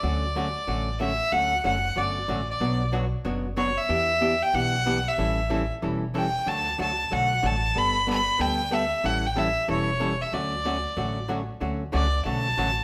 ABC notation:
X:1
M:4/4
L:1/8
Q:"Swing" 1/4=186
K:D
V:1 name="Fiddle"
d6 e2 | f2 f2 d3 d- | d2 z4 c e- | e3 g f3 e- |
e3 z3 g2 | a2 a2 f2 a2 | b2 b2 g2 e2 | f g e2 c3 e |
d6 z2 | z2 d2 a4 |]
V:2 name="Hollow-body jazz guitar"
[D,F,A,CF] z [D,F,A,CF] z [D,F,A,CF] z [D,F,A,CF] z | [D,F,A,CF] z [D,F,A,CF] z [D,F,A,CF] z [D,F,A,CF] z | [B,,F,B,DFc] z [B,,F,B,DFc] z [B,,F,B,DFc] z [B,,F,B,DFc] z | [E,B,DG] z [E,B,DG] z [E,B,DG] z [E,B,DG] z |
[E,G,CEA] z [E,G,CEA] z [E,G,CEA] z [E,G,CEA] z | [D,F,A,DF] z [D,F,A,DF] z [D,F,A,DF] z [D,F,A,DF] z | [G,B,DA] z [G,B,DA] z [G,B,DA] z [G,B,DA] z | [E,G,CEA] z [E,G,CEA] z [E,G,CEA] z [E,G,CEA] z |
[D,F,A,CF] z [D,F,A,CF] z [D,F,A,CF] z [D,F,A,CF] z | [D,F,A,CF] z [D,F,A,CF] z [D,F,A,CF] z [D,F,A,CF] z |]
V:3 name="Upright bass" clef=bass
D,,4 A,,,4 | D,,2 F,,,2 G,,,2 A,,,2 | B,,,4 F,,,4 | E,,4 B,,,4 |
A,,,4 E,,,4 | D,,2 C,,2 B,,,2 A,,,2 | G,,,4 D,,4 | A,,,4 E,,,4 |
D,,4 A,,,4 | D,,2 C,,2 B,,,2 A,,,2 |]